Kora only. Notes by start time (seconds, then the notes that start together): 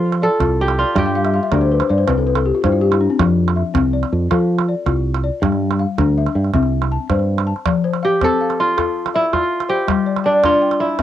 Already playing: F4
0.23 A4
0.61 G4
0.78 F4
0.98 G4
8.05 G4
8.24 A4
8.60 F4
9.15 E4
9.33 F4
9.69 G4
10.26 D4
10.45 F4
10.80 E4